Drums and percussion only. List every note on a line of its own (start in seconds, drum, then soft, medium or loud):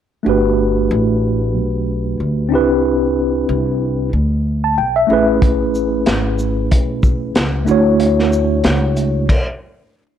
5.42 kick loud
5.42 closed hi-hat medium
5.75 shaker soft
6.06 snare loud
6.06 closed hi-hat medium
6.39 shaker soft
6.71 kick medium
6.71 closed hi-hat medium
7.03 kick medium
7.03 shaker soft
7.35 snare loud
7.35 closed hi-hat medium
7.67 shaker soft
8.00 closed hi-hat medium
8.19 snare soft
8.32 shaker soft
8.64 snare medium
8.64 closed hi-hat medium
8.97 closed hi-hat soft
8.97 shaker soft
9.29 kick medium
9.29 crash medium